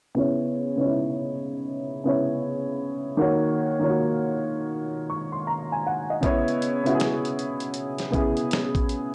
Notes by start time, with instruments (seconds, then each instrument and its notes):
0.15 upright piano C#3 B3 E4
0.20 upright piano C#5
0.76 upright piano C#3 B3 D#4
0.81 upright piano C#5
0.86 upright piano E4
2.04 upright piano C#3 B3 E4
2.08 upright piano C#5
3.17 upright piano D#3 A#3 F#4
3.22 upright piano C#5
3.79 upright piano D#3 A#3 F4
3.84 upright piano C#5
3.89 upright piano F#4
5.10 upright piano C#6
5.32 upright piano C6
5.47 upright piano A#5
5.72 upright piano G#5
5.86 upright piano F#5
6.10 upright piano D#5
6.21 upright piano C#3 B3 E4, kick, closed hi-hat
6.26 upright piano C#5
6.48 closed hi-hat
6.62 closed hi-hat
6.84 upright piano C#3 B3 E4, closed hi-hat
6.88 upright piano F#4
6.95 upright piano G#4
7.00 snare, closed hi-hat
7.25 closed hi-hat
7.39 closed hi-hat
7.60 closed hi-hat
7.74 closed hi-hat
7.98 snare, closed hi-hat
8.11 upright piano C#3 B3 E4, kick, closed hi-hat
8.15 upright piano G#4
8.37 closed hi-hat
8.51 snare, closed hi-hat
8.75 kick, closed hi-hat
8.89 closed hi-hat